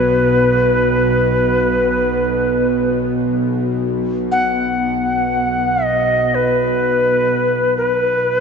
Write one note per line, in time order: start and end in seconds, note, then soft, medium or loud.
0.00 7.06 B1 medium
0.00 7.05 B2 medium
0.00 3.01 B4 medium
4.32 5.85 F#5 medium
5.84 6.36 D#5 medium
6.35 7.77 B4 medium
7.07 8.40 B1 medium
7.07 8.40 B2 medium
7.77 8.40 B4 medium